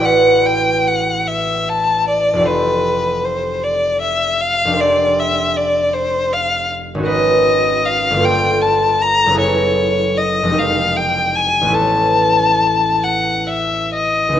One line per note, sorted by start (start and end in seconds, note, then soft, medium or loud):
0.00 2.43 A1 soft
0.00 2.44 E4 soft
0.00 2.46 F#4 soft
0.00 1.39 A4 soft
0.00 2.47 B4 soft
0.00 2.49 D5 soft
0.04 0.47 F#5 medium
0.46 0.89 G5 medium
0.87 1.29 F#5 soft
1.28 1.71 E5 medium
1.69 2.08 A5 medium
2.08 2.47 D5 medium
2.33 4.64 F1 soft
2.33 6.26 F4 soft
2.39 4.69 G4 soft
2.39 4.80 A4 soft
2.45 3.26 B4 medium
2.45 4.75 C5 soft
3.25 3.65 C5 soft
3.64 4.01 D5 medium
4.02 4.42 E5 medium
4.41 4.82 F5 medium
4.65 7.05 F1 soft
4.65 7.06 D4 soft
4.71 7.07 G4 soft
4.71 7.02 A#4 soft
4.76 7.10 C5 soft
4.80 5.21 D5 medium
5.20 5.58 E5 medium
5.56 5.95 D5 medium
5.93 6.34 C5 medium
6.33 6.71 F5 medium
6.95 8.21 G#1 soft
6.95 8.22 C#4 soft
7.00 8.23 F#4 soft
7.00 9.40 A#4 soft
7.06 8.26 B4 soft
7.06 7.87 D#5 medium
7.85 8.26 F5 medium
8.11 9.36 G1 soft
8.11 9.38 A#3 soft
8.17 9.39 F4 soft
8.17 9.36 A4 soft
8.22 9.42 C5 soft
8.22 8.63 G5 medium
8.62 9.03 A5 medium
9.02 9.39 A#5 medium
9.26 10.54 F#1 soft
9.26 10.55 B3 soft
9.31 10.56 E4 soft
9.31 11.77 G#4 soft
9.37 10.59 A4 soft
9.37 10.19 C#5 medium
10.18 10.60 D#5 medium
10.43 11.72 F1 soft
10.43 11.74 G#3 soft
10.48 11.75 D#4 soft
10.48 11.77 G4 soft
10.54 11.78 A#4 soft
10.59 10.98 F5 medium
10.96 11.37 G5 medium
11.35 11.76 G#5 medium
11.61 14.40 A1 soft
11.61 14.31 B3 soft
11.67 14.40 C#4 soft
11.67 14.36 E4 soft
11.73 14.40 A4 soft
11.73 13.05 A5 medium
13.03 13.49 F#5 medium
13.47 13.93 E5 soft
13.94 14.40 D#5 medium
14.29 14.40 C#2 soft
14.29 14.40 B3 soft
14.35 14.40 D#4 soft